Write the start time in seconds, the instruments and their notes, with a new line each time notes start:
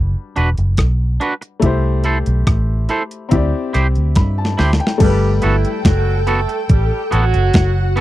Already playing: fingered electric bass F#1, grand piano G3 D4 F#4 B4
0.36 fingered electric bass E1, clean electric guitar D4 F#4 B4, closed hi-hat
0.58 fingered electric bass F#1, closed hi-hat
0.77 fingered electric bass B1, kick, cross-stick, closed hi-hat
1.20 clean electric guitar D4 F#4 B4, closed hi-hat
1.42 muted clean electric guitar stroke, closed hi-hat
1.60 fingered electric bass C2, grand piano A3 E4 G4, kick, closed hi-hat
1.66 grand piano C5
2.04 clean electric guitar E4 A4 C5, closed hi-hat
2.26 fingered electric bass B1, closed hi-hat
2.47 fingered electric bass A1, kick, cross-stick, closed hi-hat
2.89 clean electric guitar E4 A4 C5, closed hi-hat
3.11 closed hi-hat
3.29 fingered electric bass D2, grand piano C4 E4 G4, kick, closed hi-hat
3.35 grand piano D5
3.73 fingered electric bass C2, clean electric guitar E4 G4 C5, cross-stick, closed hi-hat
3.95 fingered electric bass D2, closed hi-hat
4.15 fingered electric bass G2, grand piano B5, kick, snare, closed hi-hat
4.38 grand piano A5
4.45 snare
4.58 fingered electric bass D2, clean electric guitar E4 G4 C5, snare, open hi-hat
4.73 snare
4.80 grand piano G5, muted clean electric guitar stroke, closed hi-hat
4.87 snare
4.98 fingered electric bass G1, horn section G3 G4, grand piano G3 A3 A4, string machine A4 G5, kick, closed hi-hat, crash
5.04 grand piano B4
5.42 fingered electric bass G1, horn section E3 E4, clean electric guitar B3 F#4 A4, closed hi-hat
5.65 closed hi-hat
5.85 fingered electric bass F#1, horn section F#3 F#4, kick, snare, closed hi-hat
6.27 horn section A3 A4, clean electric guitar B3 F#4 A4, closed hi-hat
6.49 muted clean electric guitar stroke, closed hi-hat
6.69 fingered electric bass A1, horn section G3 G4, kick, closed hi-hat
7.11 fingered electric bass A1, horn section F#3 F#4, clean electric guitar B3 F#4 A4, string machine F#4 F#5, closed hi-hat
7.33 fingered electric bass F#1, muted clean electric guitar stroke, closed hi-hat
7.54 fingered electric bass F#1, kick, snare, closed hi-hat
7.96 clean electric guitar B3 F#4, closed hi-hat